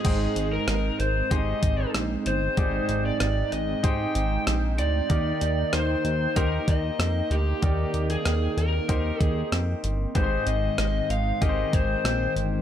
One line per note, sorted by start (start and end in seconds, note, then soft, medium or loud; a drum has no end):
0.00 0.48 G#4 medium
0.04 0.27 G#1 loud
0.04 0.96 G#2 medium
0.04 5.06 G#3 medium
0.04 5.06 C4 medium
0.04 1.02 D#4 medium
0.04 10.11 D#4 medium
0.04 1.03 G#4 medium
0.04 1.03 C5 medium
0.04 10.11 G5 medium
0.04 1.03 G5 medium
0.04 kick medium
0.04 closed hi-hat medium
0.04 crash medium
0.36 0.59 G#1 medium
0.36 closed hi-hat medium
0.53 1.00 A#4 medium
0.67 0.90 G#1 loud
0.67 cross-stick loud
0.67 closed hi-hat medium
0.99 1.22 G#1 medium
0.99 1.29 C5 medium
0.99 closed hi-hat medium
1.31 1.54 G#1 loud
1.31 2.29 D#4 medium
1.31 2.29 G4 medium
1.31 2.29 G#4 medium
1.31 2.29 C5 medium
1.31 1.91 D#5 medium
1.31 kick medium
1.31 closed hi-hat medium
1.63 1.85 G#1 medium
1.63 kick medium
1.63 closed hi-hat medium
1.94 2.17 A#1 medium
1.94 cross-stick loud
1.94 closed hi-hat medium
2.26 2.49 G1 medium
2.26 3.05 C5 medium
2.26 closed hi-hat medium
2.57 2.80 G#1 medium
2.57 3.48 G#2 medium
2.57 3.55 D#4 medium
2.57 3.55 G4 medium
2.57 3.55 G#4 medium
2.57 3.56 D5 medium
2.57 kick loud
2.57 closed hi-hat medium
2.89 3.12 G#1 loud
2.89 closed hi-hat medium
3.06 3.53 D5 medium
3.20 3.43 G#1 loud
3.20 cross-stick medium
3.20 closed hi-hat medium
3.52 3.75 G#1 medium
3.52 3.85 D#5 medium
3.52 closed hi-hat medium
3.83 4.06 G#1 medium
3.83 4.81 D#4 medium
3.83 4.82 G4 medium
3.83 4.82 G#4 medium
3.83 4.82 C5 medium
3.83 4.43 G5 medium
3.83 kick medium
3.83 closed hi-hat medium
4.15 4.38 G#1 medium
4.15 closed hi-hat medium
4.47 4.80 A#1 medium
4.47 cross-stick medium
4.47 closed hi-hat medium
4.78 5.01 D2 medium
4.78 5.76 D5 medium
4.78 closed hi-hat medium
5.09 5.33 D#2 medium
5.09 6.01 D#3 medium
5.09 10.11 A#3 medium
5.09 6.08 D#4 medium
5.09 6.08 G4 medium
5.09 6.08 A#4 medium
5.09 6.08 D5 medium
5.09 kick medium
5.09 closed hi-hat medium
5.41 5.64 D#2 loud
5.41 closed hi-hat medium
5.73 5.96 D#2 loud
5.73 6.36 C5 medium
5.73 cross-stick loud
5.73 closed hi-hat medium
6.05 6.27 D#2 loud
6.05 closed hi-hat medium
6.36 6.59 D#2 loud
6.36 7.34 D#4 medium
6.36 7.34 G4 medium
6.36 7.34 A#4 medium
6.36 6.69 A#4 medium
6.36 7.34 C5 medium
6.36 kick medium
6.36 closed hi-hat medium
6.68 6.91 D#2 medium
6.68 7.33 D#5 medium
6.68 kick medium
6.68 closed hi-hat medium
6.99 7.22 F2 medium
6.99 cross-stick loud
6.99 closed hi-hat medium
7.30 7.53 D2 medium
7.30 8.10 G4 medium
7.30 closed hi-hat medium
7.62 7.85 D#2 loud
7.62 8.53 D#3 medium
7.62 12.62 C4 medium
7.62 8.60 D#4 medium
7.62 8.61 A#4 medium
7.62 8.61 D5 medium
7.62 8.60 G5 medium
7.62 kick medium
7.62 closed hi-hat medium
7.94 8.17 D#2 medium
7.94 closed hi-hat medium
8.10 8.59 G#4 medium
8.10 closed hi-hat soft
8.25 8.48 D#2 loud
8.25 cross-stick medium
8.25 closed hi-hat medium
8.57 8.80 D#2 loud
8.57 9.22 A#4 medium
8.57 closed hi-hat medium
8.88 9.12 D#2 medium
8.88 9.87 D#4 medium
8.88 9.87 G4 medium
8.88 9.87 A#4 medium
8.88 9.87 C5 medium
8.88 kick medium
8.88 closed hi-hat medium
9.20 9.43 D#2 medium
9.20 9.48 G#4 medium
9.20 kick medium
9.20 closed hi-hat medium
9.52 9.75 F2 medium
9.52 cross-stick loud
9.52 closed hi-hat medium
9.84 10.06 G1 medium
9.84 closed hi-hat medium
10.15 10.38 G#1 loud
10.15 11.06 G#2 medium
10.15 12.62 D#3 medium
10.15 12.62 G#3 medium
10.15 11.13 D#4 medium
10.15 11.13 G4 medium
10.15 11.13 G#4 medium
10.15 10.22 B4 medium
10.15 10.45 C5 medium
10.15 12.62 G5 medium
10.15 kick loud
10.15 closed hi-hat medium
10.23 11.17 C5 medium
10.47 10.69 G#1 medium
10.47 11.10 D#5 medium
10.47 closed hi-hat medium
10.78 11.01 G#1 loud
10.78 cross-stick medium
10.78 closed hi-hat medium
11.10 11.33 G#1 medium
11.10 11.42 F5 medium
11.10 closed hi-hat medium
11.41 11.64 G#1 loud
11.41 12.39 D#4 medium
11.41 12.39 G4 medium
11.41 12.40 G#4 medium
11.41 11.48 A#4 medium
11.41 11.75 D#5 medium
11.41 kick medium
11.41 closed hi-hat medium
11.49 12.43 C5 medium
11.73 11.96 G#1 loud
11.73 12.33 C5 medium
11.73 kick medium
11.73 closed hi-hat medium
12.04 12.27 A#1 medium
12.04 cross-stick loud
12.04 closed hi-hat medium
12.36 12.59 G1 medium
12.36 closed hi-hat medium